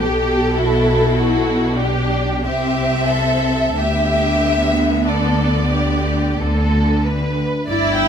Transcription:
0.00 2.46 B1 medium
0.00 2.45 B2 medium
0.00 0.56 G4 medium
0.00 1.78 A4 medium
0.57 1.14 E4 medium
0.57 1.14 F#4 medium
1.14 1.78 E4 medium
1.14 1.78 F#4 medium
1.78 2.46 D4 medium
1.78 2.44 G4 medium
2.45 3.77 C2 medium
2.45 3.77 C3 medium
2.45 3.77 C4 medium
2.45 3.10 G4 medium
2.45 3.75 E5 medium
3.10 3.76 A4 medium
3.77 6.36 D2 medium
3.77 6.36 D3 medium
3.77 7.06 B3 medium
3.77 4.94 G4 medium
3.77 5.04 E5 medium
5.06 5.68 A4 medium
5.06 7.07 D5 medium
5.74 6.40 G4 medium
6.39 7.45 D2 medium
6.39 7.45 D3 medium
6.39 7.06 A4 medium
7.07 7.68 B4 medium
7.68 8.08 G1 medium
7.68 8.08 G2 medium
7.68 8.08 E4 loud
7.68 7.94 D5 medium
7.68 8.08 E5 medium
7.95 8.08 G5 medium

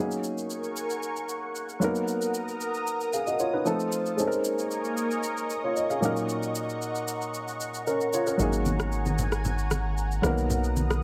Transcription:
0.00 1.77 F#3 medium
0.00 1.78 A#3 medium
0.00 1.79 D#4 medium
0.00 1.79 G#4 medium
0.00 1.80 A#4 medium
0.00 3.62 F#5 medium
0.00 1.80 G#5 medium
0.00 1.80 C#6 medium
0.04 1.81 C#4 medium
0.11 shaker medium
0.24 shaker medium
0.38 shaker soft
0.50 shaker medium
0.64 shaker soft
0.76 shaker medium
0.90 shaker medium
1.03 shaker medium
1.16 shaker medium
1.29 shaker medium
1.55 shaker medium
1.69 shaker soft
1.80 3.61 F#3 medium
1.80 3.62 A#3 medium
1.80 3.62 B3 medium
1.80 3.11 D#4 medium
1.80 3.64 A#4 medium
1.80 3.64 A#5 medium
1.80 4.16 D#6 loud
1.80 shaker medium
1.84 3.12 A#4 medium
1.95 shaker medium
2.08 shaker medium
2.22 shaker medium
2.34 shaker medium
2.48 shaker soft
2.61 shaker medium
2.74 shaker soft
2.87 shaker medium
3.01 shaker medium
3.13 3.27 G#4 medium
3.13 3.26 F5 medium
3.13 shaker medium
3.27 3.39 F#4 medium
3.27 3.39 D#5 medium
3.27 shaker medium
3.39 3.53 F4 medium
3.39 3.53 C#5 medium
3.39 shaker medium
3.53 3.65 D#4 medium
3.53 3.78 B4 medium
3.65 4.18 F3 medium
3.65 4.18 A3 medium
3.65 4.16 C4 medium
3.65 4.18 D#4 medium
3.65 4.19 A4 medium
3.65 shaker medium
3.80 shaker soft
3.92 shaker medium
4.06 shaker medium
4.16 5.98 G#3 medium
4.16 6.01 A#3 medium
4.16 5.99 C4 medium
4.16 5.99 C#4 medium
4.16 6.00 D#4 medium
4.16 6.01 A#4 medium
4.16 8.35 D#5 medium
4.16 6.01 G#5 medium
4.16 10.20 C#6 medium
4.16 shaker medium
4.21 4.26 A4 medium
4.27 5.52 A#4 medium
4.32 shaker medium
4.44 shaker medium
4.59 shaker medium
4.71 shaker medium
4.84 shaker soft
4.97 shaker loud
5.11 shaker medium
5.23 shaker medium
5.37 shaker medium
5.50 shaker medium
5.64 5.76 F4 medium
5.64 5.76 C#5 medium
5.76 5.89 D#5 medium
5.76 shaker medium
5.90 6.15 G#4 medium
5.90 6.15 F5 medium
5.90 shaker soft
6.01 8.08 A#2 medium
6.01 8.09 F#3 medium
6.01 8.09 A#3 medium
6.01 7.58 C#4 medium
6.01 7.58 D#4 medium
6.01 11.03 F#5 medium
6.01 11.03 A#5 medium
6.01 shaker loud
6.05 7.59 A#4 medium
6.17 shaker medium
6.29 shaker medium
6.43 shaker medium
6.55 shaker medium
6.69 shaker soft
6.82 shaker medium
6.95 shaker soft
7.08 shaker medium
7.21 shaker medium
7.34 shaker medium
7.48 shaker medium
7.60 shaker medium
7.74 shaker soft
7.87 8.12 C#4 medium
7.87 8.12 A#4 medium
7.87 shaker medium
8.01 shaker soft
8.13 8.27 F4 medium
8.13 8.26 C#5 medium
8.13 shaker loud
8.27 8.38 C#4 medium
8.27 8.52 A#4 medium
8.27 shaker medium
8.37 10.20 G#1 medium
8.37 10.19 F#3 medium
8.37 10.19 A#3 medium
8.37 10.20 C#4 medium
8.37 10.21 D#4 medium
8.37 10.22 G#5 medium
8.37 low conga medium
8.37 shaker medium
8.42 10.21 G#4 medium
8.53 shaker medium
8.65 high conga medium
8.65 shaker medium
8.79 cross-stick medium
8.79 high conga medium
8.79 shaker soft
8.92 shaker medium
9.06 high conga medium
9.06 shaker soft
9.18 low conga medium
9.18 shaker medium
9.32 cross-stick medium
9.32 shaker medium
9.45 low conga medium
9.45 shaker medium
9.58 shaker medium
9.71 cross-stick medium
9.71 high conga medium
9.71 shaker medium
9.98 shaker medium
10.11 shaker soft
10.22 11.03 B1 medium
10.22 11.03 F#3 medium
10.22 11.03 A#3 medium
10.22 11.03 B3 medium
10.22 11.03 D#4 medium
10.22 11.03 D#6 loud
10.22 cross-stick loud
10.22 high conga medium
10.22 shaker medium
10.26 11.03 A#4 medium
10.38 shaker medium
10.50 low conga medium
10.50 shaker medium
10.64 shaker medium
10.76 high conga medium
10.76 shaker medium
10.90 cross-stick medium
10.90 high conga soft
10.90 shaker soft

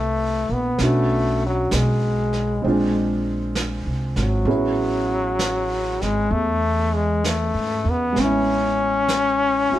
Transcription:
0.00 0.45 C2 medium
0.00 0.55 A3 medium
0.00 0.78 A3 medium
0.00 0.77 B3 soft
0.00 0.79 E4 soft
0.00 0.80 G4 medium
0.49 0.77 A#1 medium
0.53 0.84 B3 medium
0.78 1.67 B1 medium
0.78 2.63 B3 soft
0.78 2.64 C#4 soft
0.78 2.64 D4 soft
0.78 brush sweep soft
0.78 snare soft
0.83 1.43 A3 medium
0.83 2.65 F#4 soft
1.46 1.76 F#3 medium
1.71 2.60 B1 medium
1.71 3.27 G#3 medium
1.71 brush sweep soft
1.71 snare soft
1.71 hi-hat pedal medium
2.33 snare soft
2.62 3.82 A#1 medium
2.62 4.46 G#3 medium
2.62 4.46 C4 soft
2.62 4.47 D4 soft
2.62 brush sweep soft
2.67 4.48 F4 medium
3.55 brush sweep soft
3.55 snare soft
3.55 hi-hat pedal medium
3.86 4.14 C2 medium
4.16 4.44 G#1 medium
4.16 snare soft
4.20 6.04 F#3 medium
4.45 5.97 A1 medium
4.45 8.14 B3 soft
4.45 8.17 C#4 soft
4.45 8.17 E4 soft
4.45 8.16 G#4 soft
4.45 brush sweep soft
5.39 brush sweep soft
5.39 snare soft
5.39 hi-hat pedal medium
6.01 6.29 G#1 medium
6.01 6.34 G#3 medium
6.01 snare soft
6.31 7.50 E2 medium
6.31 6.96 A3 medium
6.31 brush sweep soft
6.95 7.28 G#3 medium
7.24 7.91 A3 medium
7.24 brush sweep soft
7.24 snare soft
7.24 hi-hat pedal medium
7.54 7.83 G#2 soft
7.85 8.14 E2 medium
7.90 8.22 B3 medium
8.12 9.68 A1 medium
8.12 9.79 G#3 soft
8.12 9.79 B3 soft
8.12 brush sweep soft
8.12 snare soft
8.19 9.68 C#4 soft
8.19 9.79 C#4 medium
8.19 9.70 E4 soft
9.08 brush sweep soft
9.08 snare soft
9.08 hi-hat pedal medium
9.70 9.79 C#4 soft
9.70 9.79 E4 soft
9.70 9.79 F#4 soft
9.70 muted upright bass stroke soft

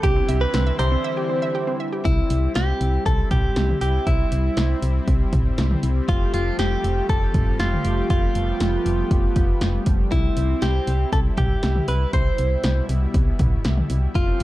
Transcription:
0.03 0.21 C2 loud
0.03 2.03 D3 medium
0.03 2.03 E3 medium
0.03 2.03 G3 medium
0.03 2.03 C4 medium
0.03 2.03 E4 loud
0.03 0.42 G4 loud
0.03 0.10 G4 loud
0.03 kick loud
0.03 closed hi-hat medium
0.16 0.23 C4 medium
0.29 0.46 C2 loud
0.29 0.35 E5 loud
0.29 closed hi-hat medium
0.41 0.48 G4 medium
0.41 0.78 B4 loud
0.54 0.72 C2 loud
0.54 0.61 C4 medium
0.54 snare loud
0.54 closed hi-hat medium
0.67 0.73 E5 medium
0.79 0.97 C2 loud
0.79 0.86 G4 medium
0.79 1.76 C5 medium
0.79 closed hi-hat medium
0.79 cowbell medium
0.92 0.98 C4 medium
1.04 1.11 E5 loud
1.17 1.24 G4 medium
1.30 1.36 C4 medium
1.42 1.49 E5 medium
1.55 1.62 G4 medium
1.67 1.74 C4 medium
1.80 1.87 E5 medium
1.93 1.99 G4 medium
2.05 2.23 C2 loud
2.05 14.11 G3 medium
2.05 8.06 C4 medium
2.05 2.52 E4 medium
2.05 6.05 E4 medium
2.05 kick loud
2.05 closed hi-hat medium
2.30 2.48 C2 loud
2.30 closed hi-hat medium
2.55 2.73 C2 loud
2.55 3.06 G4 medium
2.55 snare loud
2.55 closed hi-hat medium
2.81 2.98 C2 loud
2.81 closed hi-hat medium
3.06 3.24 C2 loud
3.06 3.31 A4 loud
3.06 kick loud
3.06 closed hi-hat medium
3.31 3.49 C2 loud
3.31 3.78 G4 loud
3.31 kick loud
3.31 closed hi-hat medium
3.31 mid tom medium
3.56 3.74 C2 medium
3.56 snare loud
3.56 closed hi-hat medium
3.69 mid tom medium
3.81 3.99 C2 loud
3.81 4.05 G4 loud
3.81 closed hi-hat medium
4.07 4.24 C2 loud
4.07 4.78 E4 medium
4.07 kick loud
4.07 closed hi-hat medium
4.32 4.50 C2 loud
4.32 closed hi-hat medium
4.57 4.75 C2 loud
4.57 snare loud
4.57 closed hi-hat medium
4.82 5.00 C2 medium
4.82 closed hi-hat medium
5.08 5.25 C2 loud
5.08 kick loud
5.08 closed hi-hat medium
5.33 5.50 C2 loud
5.33 kick loud
5.33 closed hi-hat medium
5.33 mid tom medium
5.58 5.76 C2 loud
5.58 snare loud
5.58 closed hi-hat medium
5.71 mid tom medium
5.83 6.01 C2 loud
5.83 closed hi-hat medium
6.08 6.26 F1 loud
6.08 10.08 F3 medium
6.08 10.08 A3 medium
6.08 6.33 F4 medium
6.08 10.08 G4 medium
6.08 kick loud
6.08 closed hi-hat medium
6.34 6.51 F1 loud
6.34 6.57 F4 medium
6.34 closed hi-hat medium
6.59 6.76 F1 loud
6.59 7.06 G4 medium
6.59 snare loud
6.59 closed hi-hat medium
6.84 7.02 F1 loud
6.84 closed hi-hat medium
7.09 7.27 F1 loud
7.09 7.59 A4 loud
7.09 kick loud
7.09 closed hi-hat medium
7.34 7.52 F1 loud
7.34 kick loud
7.34 closed hi-hat medium
7.34 mid tom medium
7.60 7.77 F1 loud
7.60 8.09 F4 medium
7.60 snare loud
7.60 closed hi-hat medium
7.72 mid tom medium
7.85 8.03 F1 medium
7.85 closed hi-hat medium
8.10 8.28 F1 loud
8.10 10.10 B3 medium
8.10 9.83 F4 medium
8.10 kick loud
8.10 closed hi-hat medium
8.35 8.53 F1 loud
8.35 closed hi-hat medium
8.60 8.78 F1 loud
8.60 snare loud
8.60 closed hi-hat medium
8.86 9.03 F1 loud
8.86 closed hi-hat medium
9.11 9.29 F1 loud
9.11 kick loud
9.11 closed hi-hat medium
9.36 9.54 F1 loud
9.36 kick medium
9.36 closed hi-hat medium
9.61 9.79 F1 loud
9.61 snare loud
9.61 closed hi-hat medium
9.86 10.04 F1 medium
9.86 kick medium
9.86 closed hi-hat medium
10.12 10.29 C2 loud
10.12 12.11 C4 medium
10.12 14.11 E4 medium
10.12 10.64 E4 medium
10.12 kick loud
10.12 closed hi-hat medium
10.37 10.55 C2 loud
10.37 closed hi-hat medium
10.62 10.80 C2 loud
10.62 11.12 G4 medium
10.62 snare loud
10.62 closed hi-hat medium
10.87 11.05 C2 loud
10.87 closed hi-hat medium
11.13 11.30 C2 loud
11.13 11.19 A4 medium
11.13 kick loud
11.13 closed hi-hat medium
11.38 11.55 C2 loud
11.38 11.88 G4 loud
11.38 kick loud
11.38 closed hi-hat medium
11.38 mid tom medium
11.63 11.81 C2 medium
11.63 snare loud
11.63 closed hi-hat medium
11.76 mid tom medium
11.88 12.06 C2 loud
11.88 12.13 B4 loud
11.88 closed hi-hat medium
12.13 12.31 C2 loud
12.13 14.13 B2 medium
12.13 12.85 C5 loud
12.13 kick loud
12.13 closed hi-hat medium
12.38 12.56 C2 loud
12.38 closed hi-hat medium
12.64 12.81 C2 loud
12.64 snare loud
12.64 closed hi-hat medium
12.89 13.07 C2 loud
12.89 closed hi-hat medium
13.14 13.32 C2 loud
13.14 kick loud
13.14 closed hi-hat medium
13.39 13.57 C2 loud
13.39 kick loud
13.39 closed hi-hat medium
13.39 mid tom medium
13.65 13.82 C2 loud
13.65 snare loud
13.65 closed hi-hat medium
13.77 mid tom medium
13.90 14.08 C2 loud
13.90 closed hi-hat medium
14.15 14.33 F1 loud
14.15 14.43 F3 medium
14.15 14.43 G3 medium
14.15 14.43 A3 medium
14.15 14.43 C4 medium
14.15 14.43 F4 loud
14.15 14.43 G4 medium
14.15 kick loud
14.15 closed hi-hat medium

